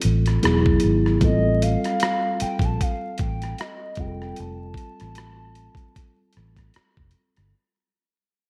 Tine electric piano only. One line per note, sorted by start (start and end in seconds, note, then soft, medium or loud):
0.00 0.38 G3 medium
0.00 0.38 C4 soft
0.00 0.39 F4 medium
0.00 0.39 A4 medium
0.42 1.21 F#3 medium
0.42 1.20 B3 medium
0.42 1.22 E4 medium
0.42 1.22 G#4 medium
1.21 3.93 G3 medium
1.21 1.29 B3 soft
1.21 3.94 F4 soft
1.21 3.95 A4 medium
1.28 3.97 C4 medium
3.97 7.09 G3 medium
3.97 7.10 C4 medium
3.97 7.10 F4 medium
3.97 4.06 G#4 soft
4.07 7.14 A4 medium